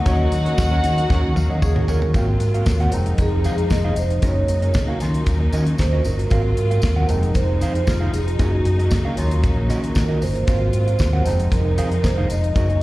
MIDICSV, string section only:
0, 0, Header, 1, 2, 480
1, 0, Start_track
1, 0, Tempo, 520833
1, 57, Time_signature, 4, 2, 24, 8
1, 11823, End_track
2, 0, Start_track
2, 0, Title_t, "String section"
2, 0, Program_c, 0, 48
2, 0, Note_on_c, 0, 49, 73
2, 0, Note_on_c, 0, 54, 69
2, 0, Note_on_c, 0, 58, 72
2, 0, Note_on_c, 0, 63, 85
2, 1937, Note_off_c, 0, 54, 0
2, 1938, Note_off_c, 0, 49, 0
2, 1940, Note_off_c, 0, 58, 0
2, 1940, Note_off_c, 0, 63, 0
2, 1970, Note_on_c, 0, 65, 72
2, 1971, Note_on_c, 0, 48, 74
2, 1971, Note_on_c, 0, 58, 65
2, 1972, Note_on_c, 0, 54, 68
2, 2683, Note_on_c, 0, 63, 84
2, 2685, Note_off_c, 0, 65, 0
2, 2686, Note_off_c, 0, 58, 0
2, 2687, Note_off_c, 0, 54, 0
2, 2688, Note_on_c, 0, 53, 66
2, 2689, Note_on_c, 0, 56, 64
2, 3875, Note_off_c, 0, 48, 0
2, 3877, Note_off_c, 0, 63, 0
2, 3880, Note_off_c, 0, 53, 0
2, 3881, Note_off_c, 0, 56, 0
2, 3887, Note_on_c, 0, 49, 65
2, 3887, Note_on_c, 0, 58, 67
2, 3889, Note_on_c, 0, 54, 62
2, 3889, Note_on_c, 0, 63, 79
2, 4605, Note_off_c, 0, 49, 0
2, 4606, Note_off_c, 0, 54, 0
2, 4617, Note_on_c, 0, 49, 80
2, 4619, Note_on_c, 0, 54, 66
2, 5794, Note_off_c, 0, 63, 0
2, 5805, Note_off_c, 0, 49, 0
2, 5809, Note_on_c, 0, 48, 72
2, 5809, Note_on_c, 0, 65, 82
2, 6506, Note_off_c, 0, 58, 0
2, 6519, Note_off_c, 0, 54, 0
2, 6526, Note_off_c, 0, 65, 0
2, 6535, Note_on_c, 0, 53, 69
2, 6535, Note_on_c, 0, 56, 76
2, 6538, Note_on_c, 0, 63, 88
2, 7714, Note_off_c, 0, 48, 0
2, 7724, Note_off_c, 0, 53, 0
2, 7724, Note_off_c, 0, 56, 0
2, 7733, Note_on_c, 0, 58, 67
2, 7735, Note_on_c, 0, 49, 73
2, 7736, Note_on_c, 0, 54, 61
2, 8445, Note_off_c, 0, 54, 0
2, 8456, Note_on_c, 0, 54, 65
2, 9625, Note_off_c, 0, 63, 0
2, 9636, Note_off_c, 0, 49, 0
2, 9644, Note_off_c, 0, 54, 0
2, 9657, Note_on_c, 0, 48, 72
2, 9660, Note_on_c, 0, 65, 69
2, 9661, Note_on_c, 0, 54, 64
2, 10347, Note_off_c, 0, 58, 0
2, 10370, Note_off_c, 0, 65, 0
2, 10371, Note_off_c, 0, 54, 0
2, 10385, Note_on_c, 0, 53, 60
2, 10386, Note_on_c, 0, 56, 71
2, 10387, Note_on_c, 0, 63, 82
2, 11556, Note_off_c, 0, 48, 0
2, 11566, Note_off_c, 0, 63, 0
2, 11567, Note_off_c, 0, 53, 0
2, 11568, Note_off_c, 0, 56, 0
2, 11577, Note_on_c, 0, 63, 69
2, 11578, Note_on_c, 0, 49, 69
2, 11579, Note_on_c, 0, 54, 66
2, 11579, Note_on_c, 0, 58, 66
2, 11823, Note_off_c, 0, 49, 0
2, 11823, Note_off_c, 0, 54, 0
2, 11823, Note_off_c, 0, 58, 0
2, 11823, Note_off_c, 0, 63, 0
2, 11823, End_track
0, 0, End_of_file